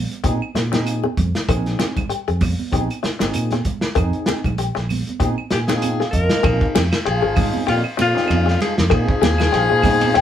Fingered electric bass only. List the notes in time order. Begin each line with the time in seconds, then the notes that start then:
0.24 A#2
0.55 A#2
1.17 F2
1.36 muted fingered electric bass stroke
1.49 A#1
1.97 G#1
2.28 F2
2.73 A#1
3.05 muted fingered electric bass stroke
3.22 G#1
3.34 A#2
3.96 F2
4.28 muted fingered electric bass stroke
4.45 A#1
4.77 A#1
5.20 A#2
5.52 A#2
6.13 F2
6.32 muted fingered electric bass stroke
6.44 A#1
6.77 F2
7.07 A#1
7.24 G#1
7.68 A#2
7.99 A#2
8.30 F2
8.79 F2
8.92 A#2
9.22 D#2
9.54 A#1
9.71 A#2
10.16 F2